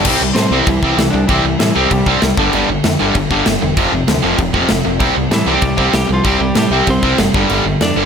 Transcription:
0.05 picked electric bass C2, distorted electric guitar C3 G3 C4, kick, crash
0.21 picked electric bass C2, distorted electric guitar C3 G3
0.35 picked electric bass A2, distorted electric guitar C3 G3, lead electric guitar C4 C5, snare, crash
0.51 picked electric bass C2, distorted electric guitar C3 G3 C4
0.59 lead electric guitar E3 E4
0.67 picked electric bass C2, distorted electric guitar C3 G3, kick, crash
0.82 picked electric bass C2, distorted electric guitar C3 G3 C4, kick
0.97 picked electric bass C2, distorted electric guitar C3 G3, lead electric guitar E3 E4, snare, crash
1.10 picked electric bass C2, distorted electric guitar C3 G3, lead electric guitar D4 D5
1.27 picked electric bass C2, distorted electric guitar C3 G3 C4, lead electric guitar E3 E4, kick, crash
1.44 picked electric bass C2, distorted electric guitar C3 G3
1.59 picked electric bass A2, distorted electric guitar C3 G3, lead electric guitar E3 E4, snare, crash
1.75 picked electric bass C2, distorted electric guitar C3 G3 C4, lead electric guitar G3 G4
1.91 picked electric bass C2, distorted electric guitar C3 G3, kick, crash
2.06 picked electric bass C2, distorted electric guitar C3 G3 C4, kick
2.22 picked electric bass C2, distorted electric guitar C3 G3, snare, crash
2.37 picked electric bass G1, distorted electric guitar G2 D3 G3, kick
2.53 picked electric bass G1, distorted electric guitar G2 D3 G3, crash
2.69 picked electric bass G1, distorted electric guitar G2 D3
2.84 picked electric bass F2, distorted electric guitar G2 D3, snare, crash
3.00 picked electric bass G1, distorted electric guitar G2 D3 G3
3.15 picked electric bass G1, distorted electric guitar G2 D3, kick, crash
3.31 picked electric bass G1, distorted electric guitar G2 D3 G3, kick
3.46 picked electric bass G1, distorted electric guitar G2 D3, snare, crash
3.62 picked electric bass E1, distorted electric guitar G2 D3
3.77 picked electric bass F1, distorted electric guitar F2 C3 F3, kick, crash
3.92 picked electric bass F1, distorted electric guitar F2 C3
4.08 picked electric bass D2, distorted electric guitar F2 C3, snare, crash
4.23 picked electric bass F1, distorted electric guitar F2 C3 F3
4.38 picked electric bass F1, distorted electric guitar F2 C3, kick, crash
4.54 picked electric bass F1, distorted electric guitar F2 C3 F3, kick
4.68 picked electric bass F1, distorted electric guitar F2 C3, snare, crash
4.85 picked electric bass F1, distorted electric guitar F2 C3
4.99 picked electric bass C2, distorted electric guitar C3 G3 C4, kick, crash
5.15 picked electric bass C2, distorted electric guitar C3 G3
5.31 picked electric bass A2, distorted electric guitar C3 G3, lead electric guitar E3 E4, snare, crash
5.46 picked electric bass C2, distorted electric guitar C3 G3 C4
5.54 lead electric guitar G3 G4
5.61 picked electric bass C2, distorted electric guitar C3 G3, kick, crash
5.77 picked electric bass C2, distorted electric guitar C3 G3 C4, kick
5.92 picked electric bass C2, distorted electric guitar C3 G3, lead electric guitar G3 G4, snare, crash
6.07 picked electric bass C2, distorted electric guitar C3 G3
6.13 lead electric guitar F3 F4
6.24 picked electric bass C2, distorted electric guitar C3 G3 C4, lead electric guitar G3 G4, kick, crash
6.39 picked electric bass C2, distorted electric guitar C3 G3
6.55 picked electric bass A2, distorted electric guitar C3 G3, lead electric guitar G3, snare, crash
6.59 lead electric guitar G4
6.70 picked electric bass C2, distorted electric guitar C3 G3 C4
6.87 picked electric bass C2, distorted electric guitar C3 G3, lead electric guitar C4 C5, kick, crash
7.03 picked electric bass C2, distorted electric guitar C3 G3 C4, kick
7.18 picked electric bass F#1, distorted electric guitar C3 G3, snare, crash
7.34 picked electric bass G1, distorted electric guitar G2 D3 G3, kick
7.49 picked electric bass G1, distorted electric guitar G2 D3 G3, crash
7.65 picked electric bass G1, distorted electric guitar G2 D3
7.81 picked electric bass F2, distorted electric guitar G2 D3, lead electric guitar D5, snare, crash
7.85 lead electric guitar D4
7.96 picked electric bass G1, distorted electric guitar G2 D3 G3

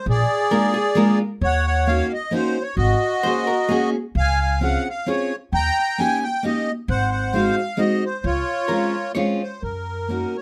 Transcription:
0.06 upright bass A#1, accordion G#4
0.10 accordion D5
0.51 steel-string acoustic guitar G#3 A#3 D4 F4, hollow-body jazz guitar A#4
0.74 hollow-body jazz guitar G#4
0.95 steel-string acoustic guitar G#3 A#3 D4 F4, hollow-body jazz guitar A#4
1.41 upright bass D#2, accordion C#5
1.46 accordion F#5
1.67 accordion F#5
1.87 steel-string acoustic guitar A#3 C#4 D#4 F#4, accordion F5
2.13 accordion D#5
2.31 steel-string acoustic guitar A#3 C#4 D#4 F#4, accordion C5
2.62 accordion C#5
2.77 upright bass G#1, accordion F#4 D#5
3.23 steel-string acoustic guitar A#3 C#4 F#4 G#4, hollow-body jazz guitar C5
3.47 hollow-body jazz guitar A#4
3.69 steel-string acoustic guitar A#3 C#4 F#4 G#4, hollow-body jazz guitar G#4
4.15 upright bass C#2, accordion F5
4.20 accordion G#5
4.41 accordion G#5
4.61 steel-string acoustic guitar C4 C#4 F4 G#4, accordion F#5
4.90 accordion F5
5.06 steel-string acoustic guitar C4 C#4 F4 G#4, accordion C#5
5.52 upright bass D#2, accordion G5 A#5
5.80 accordion A#5
5.98 steel-string acoustic guitar A#3 C#4 D#4 G4, accordion G#5
6.23 accordion G5
6.43 steel-string acoustic guitar A#3 C#4 D#4 G4, accordion D#5
6.88 upright bass G#1, accordion C5 F#5
7.12 accordion F#5
7.33 steel-string acoustic guitar G#3 C4 D#4 F#4, accordion F5
7.77 steel-string acoustic guitar G#3 C4 D#4 F#4, accordion D#5
8.05 accordion C5
8.24 upright bass C#2, accordion F4 C#5
8.68 steel-string acoustic guitar G#3 C4 C#4 F4, hollow-body jazz guitar A#4
9.15 steel-string acoustic guitar G#3 C4 C#4 F4, hollow-body jazz guitar C#5
9.42 accordion C5
9.62 upright bass F#2, accordion A#4
10.08 steel-string acoustic guitar A#3 C#4 D#4 F#4
10.37 accordion C#5

